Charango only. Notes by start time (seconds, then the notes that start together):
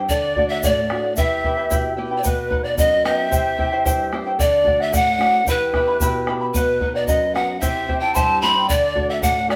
Already playing: G5
0.00 E4 C5
0.11 A4 D5 F#5
0.37 A4 D5 F#5
0.51 D5 F#5
0.64 A4 D5 F#5
0.90 A4 D5 F#5
1.04 D5 F#5
1.18 E4 G4 B4 E5 G5
1.45 E4 B4 E5 G5
1.57 E4 B4 G5
1.70 E4 G4 B4 E5 G5
1.97 E4 B4 E5 G5
2.11 E4 B4 G5
2.24 B4 D#5 F#5
2.51 B4 D#5 F#5
2.64 D#5 F#5
2.78 B4 D#5 F#5
3.04 B4 D#5 F#5
3.17 D#5 F#5
3.31 E4 G4 C5 E5 G5
3.58 E4 C5 E5 G5
3.72 E4 C5 G5
3.85 E4 G4 C5 E5 G5
4.13 E4 C5 E5 G5
4.26 E4 C5 G5
4.39 A4 D5 F#5
4.66 A4 D5 F#5
4.80 D5 F#5
4.93 A4 D5 F#5
5.20 A4 D5 F#5
5.34 D5 F#5
5.47 E4 G4 E5 G5 B5
5.75 E4 E5 G5 B5
5.88 E4 E5 B5
6.01 E4 G4 E5 G5 B5
6.29 E4 E5 G5 B5
6.41 E4 E5 B5
6.55 B4 D#5 F#5
6.81 B4 D#5 F#5
6.95 D#5 F#5
7.09 B4 D#5 F#5
7.36 B4 D#5 F#5
7.48 D#5 F#5
7.61 E4 G4 C5 E5 G5
7.88 E4 C5 E5 G5
8.02 E4 C5 G5
8.15 E4 G4 C5 E5 G5
8.42 E4 C5 E5 G5
8.56 E4 C5 G5
8.69 A4 D5 F#5
8.96 A4 D5 F#5
9.10 D5 F#5
9.23 A4 D5 F#5
9.50 A4 D5 F#5